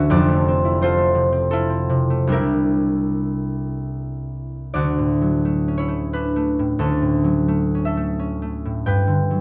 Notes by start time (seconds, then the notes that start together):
Already playing: D2 F#3 A3 C#4 F#4 C#5 E5 F#5
0.10 F1 F2 D5
0.28 A3
0.48 C4
0.65 E4
0.81 C4 F4 A4 C5
0.97 A3
1.15 C3
1.32 C4
1.51 E4 F4 A4
1.70 C4
1.89 C3
2.10 A3
2.27 C2 G3 D4
2.32 E4 G4 A#4
4.74 D2 F#4 D5
4.98 A2
5.21 F#3
5.45 A3
5.68 C#4
5.78 E4 C#5
5.88 A3
6.13 C#4 D4 B4
6.36 A3
6.59 A2
6.79 D2 C#4 A4
7.02 A2
7.24 F#3
7.48 A3
7.75 C#4
7.85 A4 E5
7.97 A3
8.19 C#4
8.42 A3
8.65 A2
8.86 G2 B4 G5
9.07 D3
9.31 F#3